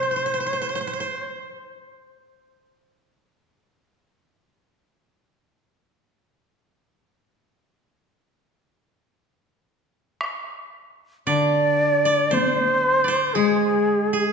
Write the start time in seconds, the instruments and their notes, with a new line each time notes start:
Already playing: koto C3, shakuhachi C5
0.03 koto C5
0.11 koto C5
0.16 koto C5
0.26 koto C5
0.34 koto C5
0.40 koto C5
0.46 koto C5
0.53 koto C5
0.62 koto C5
0.69 koto C5
0.75 koto C5
0.81 koto C5
0.87 koto C5
0.93 koto C5
1.00 koto C5
10.21 taiko rim
11.27 koto D3 D5, shakuhachi D5
12.05 koto D5
12.30 koto C5, shakuhachi C5 D5, taiko high
13.04 koto D5
13.08 koto C5
13.34 koto G#3 G#4, shakuhachi G#4
14.13 koto G#4